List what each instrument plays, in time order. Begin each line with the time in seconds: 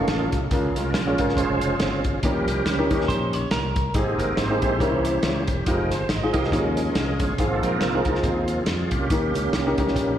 Already playing: tonewheel organ D#3 A3 A#3 C#4 F4 G#4, upright piano C#4 D#4 F4 A4
0.08 fingered electric bass A1, snare, closed hi-hat
0.32 fingered electric bass C2, kick, closed hi-hat
0.51 fingered electric bass C#2, upright piano C#3 C#4 F4 G#4 A#4, tonewheel organ F4 G#4, kick, closed hi-hat
0.76 fingered electric bass C2, tonewheel organ C#3 G#3 C#4 F4 A#4, closed hi-hat
0.94 fingered electric bass A#1, snare, closed hi-hat
1.06 upright piano C#4 F4 G#4 C#5
1.18 fingered electric bass G#1, upright piano C#4 F4 G#4 A#4, tonewheel organ C5, kick, closed hi-hat
1.29 snare
1.36 fingered electric bass F1, tonewheel organ F4 G#4 C5, kick, closed hi-hat
1.61 closed hi-hat
1.80 fingered electric bass G1, tonewheel organ C#3 G#3 C4, snare, closed hi-hat
2.04 kick, closed hi-hat
2.23 fingered electric bass D#2, upright piano D#3 C#4 D#4 G4 A#4, tonewheel organ F3 G3 C#4 G4 A#4, kick, closed hi-hat
2.48 fingered electric bass C2, closed hi-hat
2.66 fingered electric bass C#2, snare, closed hi-hat
2.78 upright piano C#4 D#4 G4 A#4
2.90 fingered electric bass D#2, upright piano C#4 D#4 G4 A#4, kick, closed hi-hat
3.01 snare
3.08 fingered electric bass A#1, clean electric guitar C5, kick, closed hi-hat
3.33 clean electric guitar C#5, closed hi-hat
3.51 fingered electric bass C2, clean electric guitar A#4, snare, closed hi-hat
3.76 kick, closed hi-hat
3.94 fingered electric bass G#1, upright piano G#2 C4 D#4 G4 G#4, tonewheel organ G#3 A#3 C4 D#4 G#4, kick, closed hi-hat
4.19 fingered electric bass G1, tonewheel organ A#4, closed hi-hat
4.37 fingered electric bass G#1, tonewheel organ C5, snare, closed hi-hat
4.50 upright piano C4 D#4 G4 G#4
4.61 fingered electric bass A#1, upright piano C4 D#4 G4 G#4, tonewheel organ E4 G4 C5, kick, closed hi-hat
4.79 fingered electric bass C2, upright piano C3 C4 C#4 D#4 A#4, tonewheel organ E3 A#3 C#5, kick, closed hi-hat
4.87 upright piano E4
5.05 closed hi-hat
5.23 fingered electric bass C#2, snare, closed hi-hat
5.47 fingered electric bass E1, tonewheel organ G4, kick, closed hi-hat
5.65 fingered electric bass F1, tonewheel organ F3 G#3 D#4 A#4, upright piano C4 D#4 F4 G4, kick, closed hi-hat
5.73 upright piano G#4
5.91 fingered electric bass G1, tonewheel organ C5, snare, closed hi-hat
6.09 fingered electric bass G#1, tonewheel organ D#5, snare, closed hi-hat
6.23 upright piano C4 D#4 F4 G#4
6.33 fingered electric bass C2, upright piano C4 D#4 F4 G4, tonewheel organ G#4 A#4 D#5, kick, closed hi-hat
6.43 snare
6.51 fingered electric bass D#2, upright piano D#3 C#4 D#4 F4 G4, tonewheel organ F3 G#3 C#4, kick, closed hi-hat
6.58 upright piano G#4
6.77 closed hi-hat
6.95 fingered electric bass C2, snare, closed hi-hat
7.20 fingered electric bass G1, tonewheel organ G#4, kick, closed hi-hat
7.38 fingered electric bass G#1, upright piano G#2 C4 D#4 F4 G#4, tonewheel organ F3 A#3 C4 F4 G#4, kick, closed hi-hat
7.55 tonewheel organ A4
7.63 fingered electric bass A#1, tonewheel organ D#4 F4 A#4, closed hi-hat
7.81 fingered electric bass C2, snare, closed hi-hat
7.95 upright piano C4 D#4 F4 G#4
8.05 fingered electric bass C#2, upright piano C4 D#4 F4 G#4, kick, closed hi-hat
8.15 snare
8.23 fingered electric bass D#2, tonewheel organ C4 F4 G#4, kick, closed hi-hat
8.48 tonewheel organ F3 A#3 C4, closed hi-hat
8.66 fingered electric bass F2, snare, closed hi-hat
8.91 fingered electric bass C2, tonewheel organ A#3 C#4 G4, kick, closed hi-hat
9.10 fingered electric bass D#2, upright piano D#3 C#4 D#4 G4 A#4, kick, closed hi-hat
9.34 fingered electric bass C#2, closed hi-hat
9.53 fingered electric bass C2, snare, closed hi-hat
9.66 upright piano C#4 D#4 G4 A#4
9.78 fingered electric bass C#2, tonewheel organ F3 G3 C#4, upright piano C#4 D#4 G4 A#4, kick, closed hi-hat
9.88 snare
9.96 fingered electric bass A#1, kick, closed hi-hat